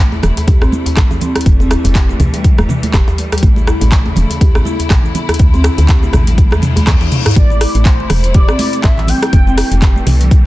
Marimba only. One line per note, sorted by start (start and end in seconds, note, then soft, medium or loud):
0.00 0.11 A3 medium
0.48 0.55 G4 medium
0.62 0.71 C4 loud
0.72 0.85 E4 loud
1.22 1.34 C4 medium
1.36 1.46 E4 medium
1.60 1.69 C4 loud
1.70 1.83 E4 loud
1.95 2.03 G4 medium
2.09 2.19 A3 medium
2.20 2.27 E3 medium
2.34 2.43 G3 medium
2.93 3.01 G4 medium
3.32 3.42 G3 medium
3.43 3.50 A3 medium
3.68 3.80 E4 loud
3.81 3.91 A3 medium
4.41 4.49 G4 medium
4.55 4.65 B3 loud
4.66 4.78 E4 loud
5.15 5.27 B3 medium
5.29 5.39 E4 medium
5.54 5.63 C4 loud
5.64 5.77 E4 loud
5.89 5.96 G4 medium
6.03 6.13 A3 medium
6.13 6.21 E3 medium
6.27 6.37 G3 medium
7.01 7.11 E4 medium
7.26 7.35 E4 loud
7.36 7.44 A3 medium
7.61 7.73 E4 loud
7.75 7.84 A3 medium
7.85 7.98 A3 medium
8.35 8.42 G4 medium
8.49 8.58 C4 loud
8.59 8.72 E4 loud
9.08 9.21 C4 medium
9.23 9.32 E4 medium
9.47 9.56 C4 loud
9.57 9.70 E4 loud
9.82 9.90 G4 medium
9.96 10.06 A3 medium
10.07 10.14 E3 medium
10.21 10.30 G3 medium